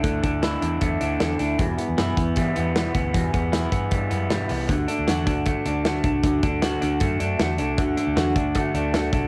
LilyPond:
<<
  \new Staff \with { instrumentName = "Clean electric guitar" } { \time 4/4 \key d \mixolydian \tempo 4 = 155 <d a d' e'>8 d'8 e'8 d'8 a8 d'8 a8 d'8 | e,8 b8 e'8 b8 g8 b8 g8 b8 | e,8 b8 e'8 b8 g8 b8 g8 b8 | d8 d'8 fis'8 d'8 a8 d'8 a8 d'8 |
d8 d'8 fis'8 d'8 a8 d'8 a8 d'8 | d8 d'8 fis'8 d'8 a8 d'8 a8 d'8 | }
  \new Staff \with { instrumentName = "Steel-string acoustic guitar" } { \time 4/4 \key d \mixolydian <d a d' e'>8 <a d' e'>8 <d a d' e'>8 <a d' e'>8 <d a d' e'>8 <a d' e'>8 <d a d' e'>8 <a d' e'>8 | <e, b, e g b e'>8 <e g b e'>8 <e, b, e g b e'>8 <e g b e'>8 <e g b e'>8 <e g b e'>8 <e, b, e g b e'>8 <e g b e'>8 | <e, b, e g b e'>8 <e g b e'>8 <e, b, e g b e'>8 <e g b e'>8 <e g b e'>8 <e g b e'>8 <e, b, e g b e'>8 <e g b e'>8 | <d a d' fis'>8 <a d' fis'>8 <d a d' fis'>8 <a d' fis'>8 <d a d' fis'>8 <a d' fis'>8 <d a d' fis'>8 <a d'>8 |
<d a d' fis'>8 <a d' fis'>8 <d a d' fis'>8 <a d' fis'>8 <d a d' fis'>8 <a d' fis'>8 <d a d' fis'>8 <a d' fis'>8 | <d a d' fis'>8 <a d' fis'>8 <d a d' fis'>8 <a d' fis'>8 <d a d' fis'>8 <a d' fis'>8 <d a d' fis'>8 <a d' fis'>8 | }
  \new Staff \with { instrumentName = "Fingered electric bass" } { \clef bass \time 4/4 \key d \mixolydian d,8 d,4 e,8 e,8 d,8 e,8 d,8 | e,8 r16 e,16 fis,8 e,8 e8 e,4 d,8 | e,8 e,4 g,8 g,8 fis,8 g,8 c,8 | d,8 r16 d,16 e,8 d,8. r16 d,4 c,8 |
d,8 d,4 d,8 fis,8 fis,8 e,8 c,8 | d,8 r16 d,16 e,8 d,8 d8 d,4 c,8 | }
  \new DrumStaff \with { instrumentName = "Drums" } \drummode { \time 4/4 <hh bd>8 <hh bd>8 <hh sn>8 hh8 <hh bd>8 hh8 <hh sn>8 hh8 | <hh bd>8 hh8 <hh sn>8 <hh bd>8 <hh bd>8 hh8 <hh sn>8 <hh bd>8 | <hh bd>8 <hh bd>8 <hh sn>8 <hh bd>8 <hh bd>8 hh8 <hh sn>8 hho8 | <hh bd>8 hh8 <hh sn>8 <hh bd>8 <hh bd>8 hh8 <hh sn>8 <hh bd>8 |
<hh bd>8 <hh bd>8 <hh sn>8 hh8 <hh bd>8 hh8 <hh sn>8 hh8 | <hh bd>8 hh8 <hh sn>8 <hh bd>8 <hh bd>8 hh8 <hh sn>8 <hh bd>8 | }
>>